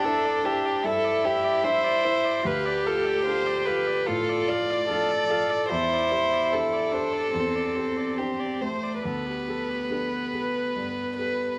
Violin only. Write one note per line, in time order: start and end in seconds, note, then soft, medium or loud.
0.05 0.46 A4 medium
0.45 0.87 G4 medium
0.85 1.26 A4 medium
1.25 1.66 G4 medium
1.64 2.48 C5 medium
2.46 2.88 B4 medium
2.86 3.25 A4 medium
3.25 3.67 C5 medium
3.65 4.08 B4 medium
4.06 4.50 A4 medium
4.48 5.70 D5 medium
5.70 6.54 C5 medium
6.53 8.19 A4 medium
8.17 8.63 G4 soft
8.61 9.02 C5 soft
9.03 11.14 B4 soft
11.17 11.57 B4 soft